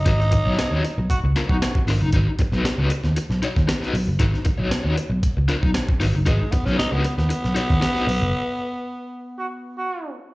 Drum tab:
HH |x-x-x-x-x-x-x-o-|x-x-x-x-x-x-x-o-|x-x-x-x-x-x-x-o-|x-x-x-x-x-x-x-o-|
SD |-o--o-----o-o-o-|---oo--o-o-ooo--|-o--o-----o-o-o-|---oo--o-o-ooo--|
BD |o-o-----o--o-o--|o-o--------o----|o-o-----o--o-o--|o-o--------o----|

HH |----------------|
SD |----------------|
BD |----------------|